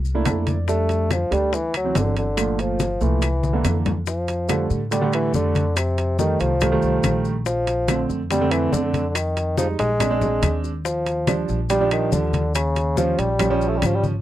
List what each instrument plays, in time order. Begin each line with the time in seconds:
Already playing: upright bass C2
0.05 high conga, maracas
0.14 grand piano A3 A#3 D4 E4
0.25 upright bass F2, grand piano A5, high bongo, low bongo, high conga, high timbale, low timbale, claves, maracas
0.47 grand piano D5, high bongo, high conga, high timbale, maracas
0.68 grand piano G3 A3 D4, bassoon A3, high bongo, high conga, maracas
0.89 high bongo, high conga, high timbale, maracas
1.11 bassoon F3, high bongo, high conga, high timbale, low timbale, claves, maracas
1.31 upright bass D2, grand piano G3 A3 D4, bassoon G3, high conga, high timbale, maracas
1.53 bassoon E3, high bongo, high conga, maracas
1.74 bassoon F#3, high conga, high timbale, claves, maracas
1.85 grand piano E3 F#3 C4
1.95 upright bass G1, bassoon D3, high bongo, low bongo, high conga, high timbale, low timbale, maracas
2.17 bassoon D3, high bongo, high timbale, maracas
2.37 grand piano A#2 F3 A3, high bongo, high conga, high timbale, claves, maracas
2.59 bassoon F3, high bongo, high conga, high timbale, maracas
2.80 high bongo, high conga, high timbale, low timbale, maracas
3.01 upright bass C2, grand piano A#2 F3 A3, bassoon E3, high bongo, high conga, maracas
3.22 high bongo, high conga, high timbale, claves, maracas
3.43 high conga, maracas
3.53 grand piano D3 E3 A#3
3.64 upright bass F2, high bongo, low bongo, high conga, high timbale, low timbale, claves, maracas
3.86 high bongo, low conga, high timbale, maracas
4.07 bassoon F3, high bongo, high conga, maracas
4.28 high bongo, high conga, high timbale, maracas
4.49 grand piano D3 G3 A3, high bongo, high conga, high timbale, claves, maracas
4.70 upright bass A2, high bongo, high conga, maracas
4.91 grand piano D3 G3 A3, bassoon G3, high bongo, high conga, high timbale, maracas
5.01 grand piano D3 G3 A3
5.13 bassoon E3, high conga, high timbale, claves, maracas
5.34 upright bass F2, bassoon D3, high bongo, low bongo, high conga, maracas
5.55 high bongo, high conga, high timbale, maracas
5.76 bassoon C3, high bongo, high conga, high timbale, claves, maracas
5.98 high bongo, high conga, high timbale, maracas
6.19 grand piano D#3 G3 A3, bassoon D#3, high bongo, high conga, maracas
6.40 upright bass C2, bassoon F3, high bongo, high conga, high timbale, maracas
6.61 grand piano D#3 G3 A3, high bongo, high conga, low conga, high timbale, claves, maracas
6.72 grand piano D#3 G3 A3
6.82 upright bass C2, high conga, maracas
7.03 upright bass A#1, high bongo, low bongo, high conga, high timbale, claves, maracas
7.25 high bongo, maracas
7.46 bassoon F3, high bongo, high conga, maracas
7.67 high bongo, high conga, high timbale, maracas
7.88 grand piano D3 A3 C4, high bongo, high conga, high timbale, claves, maracas
8.09 upright bass F2, high bongo, high conga, maracas
8.30 grand piano D3 A3 C4, bassoon G3, high bongo, high conga, high timbale, maracas
8.41 grand piano D3 A3 C4
8.51 bassoon E3, high conga, high timbale, claves, maracas
8.73 upright bass F2, bassoon D3, high bongo, low bongo, high conga, low timbale, maracas
8.94 high bongo, high conga, high timbale, maracas
9.09 bassoon D3
9.15 bassoon D#3, high bongo, high conga, high timbale, claves, maracas
9.36 high bongo, high conga, high timbale, maracas
9.57 bassoon F3, grand piano G3 G#3 D#4, high bongo, high conga, maracas
9.79 upright bass A#1, bassoon G#3, high bongo, high conga, high timbale, maracas
10.00 grand piano G#3 C4 D4, high bongo, high conga, low conga, high timbale, claves, maracas
10.10 grand piano G#3 C4 D4
10.21 high conga, low conga, maracas
10.42 upright bass D#2, high bongo, low bongo, high conga, high timbale, claves, maracas
10.64 high bongo, maracas
10.85 bassoon F3, high bongo, high conga, maracas
11.06 high bongo, high conga, high timbale, maracas
11.27 grand piano F3 G3 D4, high bongo, high conga, high timbale, claves, maracas
11.49 upright bass A#1, high bongo, high conga, maracas
11.70 grand piano F3 G3 D4, bassoon G3, high bongo, high conga, high timbale, maracas
11.80 grand piano F3 G3 D4
11.91 bassoon D#3, high conga, high timbale, claves, maracas
12.12 upright bass D#2, bassoon D3, high bongo, low bongo, high conga, maracas
12.33 high bongo, high conga, high timbale, maracas
12.55 bassoon C#3, high bongo, high conga, high timbale, claves, maracas
12.76 high bongo, high conga, high timbale, maracas
12.97 grand piano F3 G3 C#4, bassoon F3, high bongo, high conga, maracas
13.18 upright bass A#1, bassoon G3, high bongo, high conga, high timbale, maracas
13.39 grand piano F3 G3 C#4, high bongo, high conga, low conga, high timbale, claves, maracas
13.50 grand piano F3 G3 C#4
13.61 high conga, maracas
13.68 bassoon A3
13.77 bassoon G3
13.82 upright bass G#1, high bongo, low bongo, high conga, high timbale, claves, maracas
13.86 bassoon F3
13.96 bassoon G3
14.04 high bongo, high conga, maracas